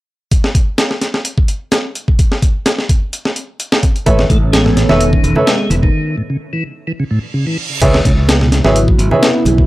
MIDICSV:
0, 0, Header, 1, 7, 480
1, 0, Start_track
1, 0, Key_signature, 4, "minor"
1, 0, Tempo, 468750
1, 324, Time_signature, 4, 2, 24, 8
1, 9896, End_track
2, 0, Start_track
2, 0, Title_t, "Grand piano"
2, 0, Program_c, 0, 0
2, 4159, Note_on_c, 0, 69, 88
2, 4160, Note_on_c, 0, 71, 80
2, 4160, Note_on_c, 0, 73, 81
2, 4161, Note_on_c, 0, 76, 95
2, 4287, Note_off_c, 0, 69, 0
2, 4287, Note_off_c, 0, 71, 0
2, 4287, Note_off_c, 0, 73, 0
2, 4288, Note_off_c, 0, 76, 0
2, 5009, Note_on_c, 0, 71, 74
2, 5009, Note_on_c, 0, 73, 76
2, 5010, Note_on_c, 0, 69, 81
2, 5010, Note_on_c, 0, 76, 94
2, 5119, Note_off_c, 0, 71, 0
2, 5120, Note_off_c, 0, 69, 0
2, 5120, Note_off_c, 0, 73, 0
2, 5120, Note_off_c, 0, 76, 0
2, 5489, Note_on_c, 0, 71, 70
2, 5489, Note_on_c, 0, 73, 66
2, 5489, Note_on_c, 0, 76, 76
2, 5490, Note_on_c, 0, 69, 74
2, 5600, Note_off_c, 0, 69, 0
2, 5600, Note_off_c, 0, 71, 0
2, 5600, Note_off_c, 0, 73, 0
2, 5600, Note_off_c, 0, 76, 0
2, 8002, Note_on_c, 0, 68, 85
2, 8002, Note_on_c, 0, 71, 85
2, 8002, Note_on_c, 0, 76, 94
2, 8003, Note_on_c, 0, 73, 82
2, 8128, Note_off_c, 0, 76, 0
2, 8129, Note_off_c, 0, 68, 0
2, 8129, Note_off_c, 0, 71, 0
2, 8129, Note_off_c, 0, 73, 0
2, 8852, Note_on_c, 0, 68, 88
2, 8852, Note_on_c, 0, 71, 77
2, 8853, Note_on_c, 0, 73, 79
2, 8853, Note_on_c, 0, 76, 93
2, 8961, Note_off_c, 0, 68, 0
2, 8961, Note_off_c, 0, 71, 0
2, 8961, Note_off_c, 0, 73, 0
2, 8961, Note_off_c, 0, 76, 0
2, 9331, Note_on_c, 0, 71, 67
2, 9331, Note_on_c, 0, 73, 66
2, 9331, Note_on_c, 0, 76, 78
2, 9332, Note_on_c, 0, 68, 75
2, 9440, Note_off_c, 0, 76, 0
2, 9441, Note_off_c, 0, 68, 0
2, 9441, Note_off_c, 0, 71, 0
2, 9441, Note_off_c, 0, 73, 0
2, 9896, End_track
3, 0, Start_track
3, 0, Title_t, "Analog synth pad"
3, 0, Program_c, 1, 89
3, 4154, Note_on_c, 1, 61, 80
3, 4158, Note_on_c, 1, 69, 95
3, 4160, Note_on_c, 1, 59, 83
3, 6059, Note_off_c, 1, 61, 0
3, 6061, Note_off_c, 1, 69, 0
3, 6062, Note_off_c, 1, 59, 0
3, 8004, Note_on_c, 1, 64, 94
3, 8005, Note_on_c, 1, 49, 82
3, 8005, Note_on_c, 1, 59, 82
3, 9896, Note_off_c, 1, 49, 0
3, 9896, Note_off_c, 1, 59, 0
3, 9896, Note_off_c, 1, 64, 0
3, 9896, End_track
4, 0, Start_track
4, 0, Title_t, "Tonewheel organ"
4, 0, Program_c, 2, 16
4, 4159, Note_on_c, 2, 45, 99
4, 4243, Note_off_c, 2, 45, 0
4, 4400, Note_on_c, 2, 57, 73
4, 4483, Note_off_c, 2, 57, 0
4, 4635, Note_on_c, 2, 56, 76
4, 4755, Note_off_c, 2, 56, 0
4, 4768, Note_on_c, 2, 44, 75
4, 4870, Note_off_c, 2, 44, 0
4, 4874, Note_on_c, 2, 45, 101
4, 4960, Note_off_c, 2, 45, 0
4, 5008, Note_on_c, 2, 51, 69
4, 5477, Note_off_c, 2, 51, 0
4, 5486, Note_on_c, 2, 49, 76
4, 5560, Note_off_c, 2, 49, 0
4, 5596, Note_on_c, 2, 56, 78
4, 5829, Note_off_c, 2, 56, 0
4, 5839, Note_on_c, 2, 52, 76
4, 5890, Note_off_c, 2, 52, 0
4, 5967, Note_on_c, 2, 51, 71
4, 6309, Note_off_c, 2, 51, 0
4, 6322, Note_on_c, 2, 45, 72
4, 6372, Note_off_c, 2, 45, 0
4, 6450, Note_on_c, 2, 49, 81
4, 6522, Note_off_c, 2, 49, 0
4, 6686, Note_on_c, 2, 52, 72
4, 6795, Note_off_c, 2, 52, 0
4, 7038, Note_on_c, 2, 52, 75
4, 7090, Note_off_c, 2, 52, 0
4, 7164, Note_on_c, 2, 49, 96
4, 7210, Note_off_c, 2, 49, 0
4, 7278, Note_on_c, 2, 45, 101
4, 7362, Note_off_c, 2, 45, 0
4, 7516, Note_on_c, 2, 49, 71
4, 7635, Note_off_c, 2, 49, 0
4, 7645, Note_on_c, 2, 52, 68
4, 7754, Note_off_c, 2, 52, 0
4, 8003, Note_on_c, 2, 49, 100
4, 8085, Note_off_c, 2, 49, 0
4, 8241, Note_on_c, 2, 61, 72
4, 8324, Note_off_c, 2, 61, 0
4, 8482, Note_on_c, 2, 59, 80
4, 8598, Note_off_c, 2, 59, 0
4, 8613, Note_on_c, 2, 47, 76
4, 8713, Note_off_c, 2, 47, 0
4, 8723, Note_on_c, 2, 49, 105
4, 8805, Note_off_c, 2, 49, 0
4, 8852, Note_on_c, 2, 54, 75
4, 9319, Note_off_c, 2, 54, 0
4, 9336, Note_on_c, 2, 52, 75
4, 9405, Note_off_c, 2, 52, 0
4, 9444, Note_on_c, 2, 59, 74
4, 9672, Note_off_c, 2, 59, 0
4, 9684, Note_on_c, 2, 56, 75
4, 9733, Note_off_c, 2, 56, 0
4, 9812, Note_on_c, 2, 54, 74
4, 9896, Note_off_c, 2, 54, 0
4, 9896, End_track
5, 0, Start_track
5, 0, Title_t, "Fingered electric bass"
5, 0, Program_c, 3, 33
5, 4162, Note_on_c, 3, 33, 97
5, 4346, Note_off_c, 3, 33, 0
5, 4401, Note_on_c, 3, 33, 96
5, 4958, Note_off_c, 3, 33, 0
5, 5008, Note_on_c, 3, 28, 84
5, 5316, Note_off_c, 3, 28, 0
5, 5361, Note_on_c, 3, 28, 98
5, 5458, Note_off_c, 3, 28, 0
5, 5841, Note_on_c, 3, 28, 89
5, 6025, Note_off_c, 3, 28, 0
5, 8003, Note_on_c, 3, 37, 95
5, 8186, Note_off_c, 3, 37, 0
5, 8246, Note_on_c, 3, 37, 97
5, 8801, Note_off_c, 3, 37, 0
5, 8851, Note_on_c, 3, 32, 87
5, 9157, Note_off_c, 3, 32, 0
5, 9200, Note_on_c, 3, 32, 104
5, 9297, Note_off_c, 3, 32, 0
5, 9682, Note_on_c, 3, 35, 90
5, 9866, Note_off_c, 3, 35, 0
5, 9896, End_track
6, 0, Start_track
6, 0, Title_t, "Reverse cymbal"
6, 0, Program_c, 4, 119
6, 7041, Note_on_c, 4, 60, 75
6, 8002, Note_off_c, 4, 60, 0
6, 9896, End_track
7, 0, Start_track
7, 0, Title_t, "Drums"
7, 322, Note_on_c, 9, 36, 93
7, 323, Note_on_c, 9, 42, 80
7, 425, Note_off_c, 9, 36, 0
7, 425, Note_off_c, 9, 42, 0
7, 452, Note_on_c, 9, 38, 54
7, 554, Note_off_c, 9, 38, 0
7, 562, Note_on_c, 9, 36, 92
7, 563, Note_on_c, 9, 42, 68
7, 664, Note_off_c, 9, 36, 0
7, 665, Note_off_c, 9, 42, 0
7, 800, Note_on_c, 9, 38, 106
7, 800, Note_on_c, 9, 42, 81
7, 902, Note_off_c, 9, 38, 0
7, 902, Note_off_c, 9, 42, 0
7, 929, Note_on_c, 9, 38, 43
7, 1031, Note_off_c, 9, 38, 0
7, 1039, Note_on_c, 9, 38, 41
7, 1039, Note_on_c, 9, 42, 65
7, 1142, Note_off_c, 9, 38, 0
7, 1142, Note_off_c, 9, 42, 0
7, 1168, Note_on_c, 9, 38, 53
7, 1270, Note_off_c, 9, 38, 0
7, 1278, Note_on_c, 9, 42, 81
7, 1381, Note_off_c, 9, 42, 0
7, 1409, Note_on_c, 9, 36, 90
7, 1511, Note_off_c, 9, 36, 0
7, 1518, Note_on_c, 9, 42, 65
7, 1621, Note_off_c, 9, 42, 0
7, 1759, Note_on_c, 9, 38, 118
7, 1759, Note_on_c, 9, 42, 90
7, 1861, Note_off_c, 9, 38, 0
7, 1861, Note_off_c, 9, 42, 0
7, 2001, Note_on_c, 9, 42, 65
7, 2103, Note_off_c, 9, 42, 0
7, 2130, Note_on_c, 9, 36, 91
7, 2233, Note_off_c, 9, 36, 0
7, 2242, Note_on_c, 9, 36, 102
7, 2242, Note_on_c, 9, 42, 78
7, 2344, Note_off_c, 9, 36, 0
7, 2344, Note_off_c, 9, 42, 0
7, 2372, Note_on_c, 9, 38, 50
7, 2475, Note_off_c, 9, 38, 0
7, 2482, Note_on_c, 9, 36, 89
7, 2483, Note_on_c, 9, 42, 68
7, 2585, Note_off_c, 9, 36, 0
7, 2585, Note_off_c, 9, 42, 0
7, 2722, Note_on_c, 9, 38, 108
7, 2722, Note_on_c, 9, 42, 84
7, 2824, Note_off_c, 9, 38, 0
7, 2824, Note_off_c, 9, 42, 0
7, 2851, Note_on_c, 9, 38, 39
7, 2954, Note_off_c, 9, 38, 0
7, 2963, Note_on_c, 9, 36, 96
7, 2964, Note_on_c, 9, 42, 69
7, 3065, Note_off_c, 9, 36, 0
7, 3066, Note_off_c, 9, 42, 0
7, 3205, Note_on_c, 9, 42, 82
7, 3308, Note_off_c, 9, 42, 0
7, 3332, Note_on_c, 9, 38, 53
7, 3434, Note_off_c, 9, 38, 0
7, 3441, Note_on_c, 9, 42, 66
7, 3544, Note_off_c, 9, 42, 0
7, 3683, Note_on_c, 9, 42, 84
7, 3786, Note_off_c, 9, 42, 0
7, 3811, Note_on_c, 9, 38, 109
7, 3914, Note_off_c, 9, 38, 0
7, 3922, Note_on_c, 9, 42, 67
7, 3923, Note_on_c, 9, 36, 97
7, 4024, Note_off_c, 9, 42, 0
7, 4025, Note_off_c, 9, 36, 0
7, 4052, Note_on_c, 9, 42, 42
7, 4154, Note_off_c, 9, 42, 0
7, 4162, Note_on_c, 9, 36, 102
7, 4162, Note_on_c, 9, 42, 80
7, 4264, Note_off_c, 9, 42, 0
7, 4265, Note_off_c, 9, 36, 0
7, 4286, Note_on_c, 9, 63, 83
7, 4289, Note_on_c, 9, 38, 56
7, 4388, Note_off_c, 9, 63, 0
7, 4392, Note_off_c, 9, 38, 0
7, 4401, Note_on_c, 9, 64, 73
7, 4403, Note_on_c, 9, 36, 92
7, 4403, Note_on_c, 9, 42, 63
7, 4503, Note_off_c, 9, 64, 0
7, 4505, Note_off_c, 9, 36, 0
7, 4506, Note_off_c, 9, 42, 0
7, 4641, Note_on_c, 9, 63, 67
7, 4643, Note_on_c, 9, 38, 109
7, 4643, Note_on_c, 9, 42, 80
7, 4744, Note_off_c, 9, 63, 0
7, 4745, Note_off_c, 9, 38, 0
7, 4745, Note_off_c, 9, 42, 0
7, 4772, Note_on_c, 9, 38, 43
7, 4874, Note_off_c, 9, 38, 0
7, 4883, Note_on_c, 9, 38, 42
7, 4883, Note_on_c, 9, 42, 67
7, 4986, Note_off_c, 9, 38, 0
7, 4986, Note_off_c, 9, 42, 0
7, 5007, Note_on_c, 9, 63, 98
7, 5012, Note_on_c, 9, 38, 55
7, 5109, Note_off_c, 9, 63, 0
7, 5114, Note_off_c, 9, 38, 0
7, 5126, Note_on_c, 9, 42, 84
7, 5228, Note_off_c, 9, 42, 0
7, 5252, Note_on_c, 9, 36, 87
7, 5355, Note_off_c, 9, 36, 0
7, 5365, Note_on_c, 9, 42, 64
7, 5468, Note_off_c, 9, 42, 0
7, 5482, Note_on_c, 9, 63, 69
7, 5486, Note_on_c, 9, 64, 85
7, 5585, Note_off_c, 9, 63, 0
7, 5589, Note_off_c, 9, 64, 0
7, 5603, Note_on_c, 9, 38, 117
7, 5603, Note_on_c, 9, 42, 89
7, 5706, Note_off_c, 9, 38, 0
7, 5706, Note_off_c, 9, 42, 0
7, 5839, Note_on_c, 9, 63, 90
7, 5845, Note_on_c, 9, 42, 69
7, 5942, Note_off_c, 9, 63, 0
7, 5948, Note_off_c, 9, 42, 0
7, 5971, Note_on_c, 9, 36, 91
7, 6073, Note_off_c, 9, 36, 0
7, 8003, Note_on_c, 9, 36, 103
7, 8003, Note_on_c, 9, 42, 80
7, 8003, Note_on_c, 9, 49, 84
7, 8105, Note_off_c, 9, 42, 0
7, 8105, Note_off_c, 9, 49, 0
7, 8106, Note_off_c, 9, 36, 0
7, 8133, Note_on_c, 9, 63, 85
7, 8134, Note_on_c, 9, 38, 59
7, 8235, Note_off_c, 9, 63, 0
7, 8236, Note_off_c, 9, 38, 0
7, 8244, Note_on_c, 9, 64, 76
7, 8245, Note_on_c, 9, 36, 94
7, 8246, Note_on_c, 9, 42, 71
7, 8347, Note_off_c, 9, 36, 0
7, 8347, Note_off_c, 9, 64, 0
7, 8349, Note_off_c, 9, 42, 0
7, 8472, Note_on_c, 9, 63, 63
7, 8486, Note_on_c, 9, 38, 107
7, 8486, Note_on_c, 9, 42, 83
7, 8575, Note_off_c, 9, 63, 0
7, 8589, Note_off_c, 9, 38, 0
7, 8589, Note_off_c, 9, 42, 0
7, 8615, Note_on_c, 9, 38, 46
7, 8717, Note_off_c, 9, 38, 0
7, 8725, Note_on_c, 9, 38, 39
7, 8725, Note_on_c, 9, 42, 67
7, 8828, Note_off_c, 9, 38, 0
7, 8828, Note_off_c, 9, 42, 0
7, 8847, Note_on_c, 9, 63, 77
7, 8853, Note_on_c, 9, 38, 58
7, 8950, Note_off_c, 9, 63, 0
7, 8955, Note_off_c, 9, 38, 0
7, 8967, Note_on_c, 9, 42, 81
7, 9070, Note_off_c, 9, 42, 0
7, 9093, Note_on_c, 9, 36, 88
7, 9196, Note_off_c, 9, 36, 0
7, 9207, Note_on_c, 9, 42, 66
7, 9309, Note_off_c, 9, 42, 0
7, 9329, Note_on_c, 9, 63, 61
7, 9331, Note_on_c, 9, 64, 89
7, 9431, Note_off_c, 9, 63, 0
7, 9433, Note_off_c, 9, 64, 0
7, 9448, Note_on_c, 9, 38, 120
7, 9448, Note_on_c, 9, 42, 86
7, 9551, Note_off_c, 9, 38, 0
7, 9551, Note_off_c, 9, 42, 0
7, 9681, Note_on_c, 9, 63, 96
7, 9687, Note_on_c, 9, 42, 69
7, 9783, Note_off_c, 9, 63, 0
7, 9790, Note_off_c, 9, 42, 0
7, 9813, Note_on_c, 9, 36, 89
7, 9896, Note_off_c, 9, 36, 0
7, 9896, End_track
0, 0, End_of_file